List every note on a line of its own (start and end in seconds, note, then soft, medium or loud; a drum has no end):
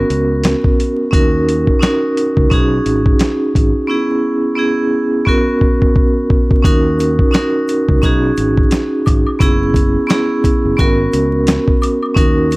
0.00 0.86 B3 medium
0.00 0.86 C#4 medium
0.00 0.87 F#4 medium
0.00 0.88 A#4 loud
0.10 0.53 C#2 medium
0.10 closed hi-hat medium
0.44 snare loud
0.44 snare medium
0.44 closed hi-hat loud
0.64 kick loud
0.80 closed hi-hat medium
1.11 1.68 D#2 loud
1.11 1.67 C#4 medium
1.11 1.68 D#4 medium
1.11 1.68 F#4 medium
1.11 1.69 A#4 loud
1.11 kick loud
1.11 closed hi-hat loud
1.49 closed hi-hat medium
1.67 kick medium
1.79 2.49 C#4 medium
1.79 2.50 D#4 medium
1.79 2.51 F#4 medium
1.79 2.51 A#4 loud
1.79 snare loud
1.79 closed hi-hat loud
1.84 snare loud
2.17 closed hi-hat medium
2.37 2.48 C#2 medium
2.37 kick medium
2.50 2.79 B1 loud
2.50 3.62 C#4 loud
2.50 3.63 D#4 medium
2.50 3.63 F#4 medium
2.50 3.64 G#4 loud
2.50 kick loud
2.50 closed hi-hat medium
2.86 3.13 G#1 medium
2.86 closed hi-hat medium
3.06 kick loud
3.19 snare loud
3.19 snare medium
3.19 closed hi-hat loud
3.55 3.71 G#1 medium
3.55 kick loud
3.55 closed hi-hat medium
3.87 4.43 B3 medium
3.87 4.44 C#4 medium
3.87 4.44 E4 medium
3.87 4.45 G#4 medium
4.55 5.24 B3 medium
4.55 5.25 C#4 medium
4.55 5.27 E4 medium
4.55 5.27 G#4 loud
5.25 6.38 B3 loud
5.25 6.38 C#4 medium
5.25 6.39 F#4 medium
5.25 6.39 A#4 loud
5.25 kick medium
5.61 kick medium
5.82 kick medium
5.96 kick medium
6.30 kick loud
6.51 kick loud
6.63 7.19 D#2 loud
6.63 7.19 C#4 medium
6.63 7.19 D#4 medium
6.63 7.20 F#4 medium
6.63 7.21 A#4 loud
6.63 kick loud
6.63 closed hi-hat loud
6.63 shaker medium
6.99 closed hi-hat medium
6.99 shaker soft
7.19 kick medium
7.31 8.01 C#4 medium
7.31 8.02 D#4 medium
7.31 8.03 F#4 medium
7.31 8.03 A#4 loud
7.31 snare loud
7.31 closed hi-hat loud
7.31 shaker medium
7.36 snare medium
7.68 closed hi-hat medium
7.68 shaker medium
7.89 8.00 C#2 medium
7.89 kick loud
8.02 8.30 B1 loud
8.02 9.14 C#4 loud
8.02 9.14 D#4 medium
8.02 9.15 F#4 medium
8.02 9.16 G#4 loud
8.02 kick loud
8.02 closed hi-hat medium
8.02 shaker medium
8.37 8.65 G#1 loud
8.37 closed hi-hat medium
8.37 shaker medium
8.57 kick medium
8.71 snare loud
8.71 snare medium
8.71 closed hi-hat loud
8.71 shaker medium
9.06 9.23 G#1 medium
9.06 kick loud
9.06 closed hi-hat medium
9.06 high woodblock medium
9.06 shaker soft
9.27 high woodblock medium
9.39 9.95 F#1 loud
9.39 9.95 B3 medium
9.39 9.96 C#4 medium
9.39 9.96 E4 medium
9.39 9.97 G#4 loud
9.39 kick loud
9.39 closed hi-hat loud
9.39 shaker medium
9.74 kick medium
9.74 closed hi-hat medium
9.74 shaker medium
10.07 10.76 B3 medium
10.07 10.77 C#4 medium
10.07 10.78 E4 medium
10.07 10.79 G#4 loud
10.07 snare loud
10.07 closed hi-hat loud
10.07 shaker medium
10.12 snare loud
10.44 kick medium
10.44 closed hi-hat medium
10.44 shaker medium
10.65 10.76 F#1 medium
10.77 11.06 G#1 loud
10.77 11.89 B3 medium
10.77 11.90 C#4 medium
10.77 11.90 F#4 medium
10.77 11.91 A#4 loud
10.77 kick loud
10.77 closed hi-hat medium
10.77 shaker medium
11.13 11.57 C#2 medium
11.13 closed hi-hat medium
11.13 shaker medium
11.47 snare loud
11.47 snare medium
11.47 closed hi-hat loud
11.47 shaker medium
11.68 kick medium
11.82 closed hi-hat medium
11.82 high woodblock medium
11.82 shaker soft
12.03 high woodblock medium
12.14 12.57 D#2 loud
12.14 12.57 C#4 medium
12.14 12.57 D#4 medium
12.14 12.57 F#4 medium
12.14 12.57 A#4 loud
12.14 kick loud
12.14 closed hi-hat loud
12.14 shaker medium
12.51 closed hi-hat medium
12.51 shaker soft